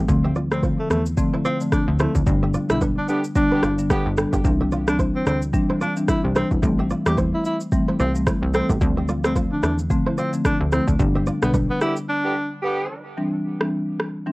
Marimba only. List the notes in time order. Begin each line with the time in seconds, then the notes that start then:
0.08 D3 F3 A3 C4
0.51 D3 F3 A3 C4
1.17 D3 F3 A3 C4
1.60 D3 F3 A3 C4
1.99 D3 F3 A3 C4
2.26 D3 G3 B3 D4
2.69 D3 G3 B3 D4
3.35 D3 G3 B3 D4
3.78 D3 G3 B3 D4
4.17 D3 G3 B3 D4
4.44 E3 G3 C4 D4
4.87 E3 G3 C4 D4
5.53 E3 G3 C4 D4
5.97 E3 G3 C4 D4
6.35 E3 G3 C4 D4
6.63 E3 G3 A3 C4
7.06 E3 G3 A3 C4
7.72 E3 G3 A3 C4
8.15 E3 G3 A3 C4
8.54 E3 G3 A3 C4
8.81 D3 F3 A3 C4
9.24 D3 F3 A3 C4
9.90 D3 F3 A3 C4
10.33 D3 F3 A3 C4
10.72 D3 F3 A3 C4
10.99 D3 G3 B3 D4
11.42 D3 G3 B3 D4
13.17 E3 G3 C4 D4
13.60 E3 G3 C4 D4
14.26 E3 G3 C4 D4